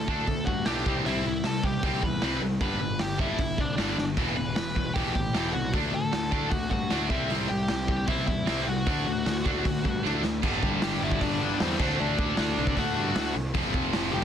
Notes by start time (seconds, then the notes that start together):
Already playing: D2
0.08 D3 A3 D4 A4 A5, kick
0.27 D2 D3 A3, kick, open hi-hat
0.46 G2 D3 A3 F#4 F#5, kick
0.65 B1 D3 A3 D4 G4 G5, snare, open hi-hat
0.86 C2 C3 G3 C4, kick
1.05 C2 C3 G3 C4 E4 E5, open hi-hat
1.25 C2 C3 G3
1.44 C2 C3 G3 A5, snare, open hi-hat
1.48 A4
1.64 C3 G3 G4 G5, kick
1.83 C2 C3 G3 C4 G5, kick, open hi-hat
1.88 G4
2.03 E2 C3 G3 B4 B5, kick
2.22 C2 C3 G3 C4, snare, open hi-hat
2.41 C2 C3 G3
2.61 G1 G2 D3 G3 B4 B5, kick, open hi-hat
2.80 G1 G2 D3
2.99 G1 G2 D3 G4 G5, snare, open hi-hat
3.19 G2 D3 G3 E4 E5, kick
3.39 G1 G2 D3, kick, open hi-hat
3.58 C2 G2 D3 D4 D5, kick
3.76 G1 G2 D3 G3 D4 D5, snare, open hi-hat
3.97 G1 G2 D3, snare
4.17 E1 E2 B2 E3, kick, open hi-hat, crash
4.36 E1 E2 B2 B4 B5
4.56 E1 E2 B2, snare, open hi-hat
4.76 E2 B2, kick
4.94 E1 E2 B2 G4 G5, kick, open hi-hat
4.98 E3
5.14 A1 E2 B2 G4 G5, kick
5.34 E1 E2 B2 E3, snare, open hi-hat
5.53 C2 E2 B2 F#4 F#5
5.73 D2 D3 A3 D4, kick, open hi-hat
5.93 D2 D3 A3 A4 A5
6.12 D2 D3 A3, snare, open hi-hat
6.31 D3 A3 D4, kick
6.50 D2 D3 A3 F#4 F#5, kick, open hi-hat
6.70 G2 D3 A3 F#4 F#5, kick
6.91 D2 D3 A3 D4, snare, open hi-hat
7.10 C2 C3 G3 C4 E4 E5, kick
7.30 C2 C3 G3 C4, open hi-hat
7.49 C2 C3 G3 G4 G5
7.68 C2 C3 G3, snare, open hi-hat
7.88 C3 G3, kick
8.07 C2 C3 G3 C4 E4 E5, kick, open hi-hat
8.27 E2 C3 G3 E4 E5, kick
8.47 C2 C3 G3 C4, snare, open hi-hat
8.67 C2 C3 G3 F#4 F#5
8.87 D2 D3 A3 D4, kick, open hi-hat
9.07 D2 D3 A3
9.26 D2 D3 A3, snare, open hi-hat
9.46 D3 A3 D4, kick
9.65 D2 D3 A3, kick, open hi-hat
9.85 G2 D3 A3, kick
10.05 D2 D3 A3 D4, snare
10.24 D2 D3 A3, snare
10.43 G1 G2 D3 G3, kick, crash
10.62 G1, kick
10.82 G1 G4 G5, snare, open hi-hat
11.02 G1 G2 D3 G3 E4 E5
11.11 kick
11.21 G1 D4 D5, kick, open hi-hat
11.41 G2 D3 G3
11.59 E2 G2 D3 G3 C4 C5, snare, open hi-hat
11.79 D2 D3 A3 D4, kick, crash
12.00 D2 D4 D5
12.19 kick
12.37 D2 D3 A3 D4 D5, snare, open hi-hat
12.58 C2
12.67 kick
12.76 D2 D3 A3 D4 F#4 F#5, kick, open hi-hat
12.95 G2 A3 D4
12.99 D3
13.16 D2, snare, open hi-hat
13.35 C2
13.54 F1 F2 C3 F3, kick, open hi-hat
13.74 F1, kick
13.93 F1, snare, open hi-hat
14.12 F1 F2 C3 F3 G4 G5